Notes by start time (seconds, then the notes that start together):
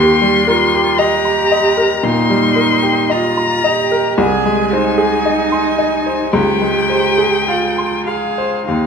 Already playing: D#2 G4 C6
0.22 G3
0.47 F4 A#4
0.74 G4
0.98 G4 D#5 A#5
1.25 A#5
1.52 D#5
1.77 A#4
2.03 A#2 D#4 C6
2.29 G3
2.56 A#4
2.83 G4
3.10 F4 D#5 A#5
3.37 A#5
3.64 G4 D#5
3.92 A#4
4.18 C2 G#4 G#5
4.46 G#3
4.73 D#4 C5
4.98 G#4
5.25 D#5
5.52 C6
5.78 D#5
6.06 C5
6.32 C#2 G4 G5
6.61 G#3
6.90 C5
7.18 G#4
7.48 F4 F5
7.78 C6
8.06 G#4 F5
8.38 C5
8.67 D#2 D#4 F5